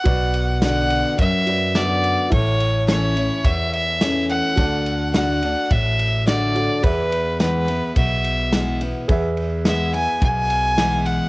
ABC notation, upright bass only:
X:1
M:4/4
L:1/8
Q:1/4=106
K:Bdor
V:1 name="Upright bass" clef=bass
B,,,4 F,,4 | A,,,4 E,,4 | D,,4 A,,,4 | E,,4 B,,,4 |
E,,4 B,,,4 |]